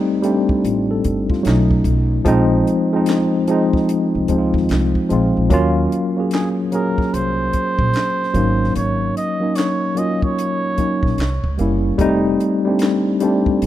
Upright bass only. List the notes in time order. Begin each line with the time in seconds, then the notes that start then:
0.64 A1
1.05 G1
1.46 B1
1.85 B1
2.26 A#1
4.15 C2
4.30 C#2
4.54 D#2
4.70 C2
5.11 A#1
5.37 A#1
5.51 D#2
7.14 C2
7.79 A#1
8.35 G#1
8.76 G#1
10.79 muted upright bass stroke
11.03 A#1
11.18 C2
11.44 C#2
11.59 F#1
11.99 F1
13.62 A1